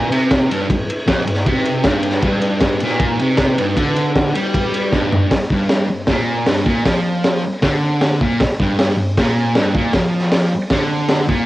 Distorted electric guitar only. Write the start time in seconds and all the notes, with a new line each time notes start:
Already playing: A#2
0.12 C3
0.50 G2
0.70 G2
1.07 F2
1.26 G2
1.46 C3
1.85 G2
2.24 G2
2.83 A#2
3.20 C3
3.57 G2
3.76 D3
4.34 G3
4.93 G2
5.52 G2
5.89 G2
6.09 A#2
6.47 G2
6.65 A#2
6.85 F3
7.44 muted distorted electric guitar stroke
7.63 D3
8.22 A#2
8.60 G2
8.98 G2
9.18 A#2
9.57 G2
9.76 A#2
9.94 F3
10.53 muted distorted electric guitar stroke
10.71 D3
11.28 A#2